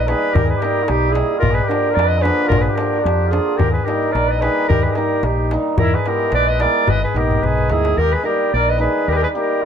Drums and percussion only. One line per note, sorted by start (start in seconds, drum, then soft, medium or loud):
0.08 darbuka tek medium
0.35 darbuka dum loud
0.50 darbuka tek soft
0.62 darbuka tek medium
0.76 darbuka tek soft
0.88 darbuka tek medium
1.15 darbuka tek medium
1.43 darbuka dum medium
1.58 darbuka tek soft
1.71 darbuka tek medium
1.86 darbuka tek soft
1.99 darbuka tek medium
2.25 darbuka tek medium
2.52 darbuka dum loud
2.78 darbuka tek medium
2.93 darbuka tek soft
3.06 darbuka tek medium
3.33 darbuka tek medium
3.59 darbuka dum loud
3.75 darbuka tek soft
3.88 darbuka tek medium
4.03 darbuka tek soft
4.15 darbuka tek medium
4.42 darbuka tek medium
4.70 darbuka dum medium
4.84 darbuka tek soft
4.95 darbuka tek medium
5.11 darbuka tek soft
5.23 darbuka tek medium
5.51 darbuka tek medium
5.78 darbuka dum medium
5.93 darbuka tek soft
6.06 darbuka tek medium
6.20 darbuka tek soft
6.32 darbuka tek medium
6.60 darbuka tek medium
6.87 darbuka dum medium
7.03 darbuka tek soft
7.16 darbuka tek medium
7.31 darbuka dum medium
7.43 darbuka dum medium
7.58 darbuka dum medium
7.70 darbuka tek medium
7.85 darbuka tek medium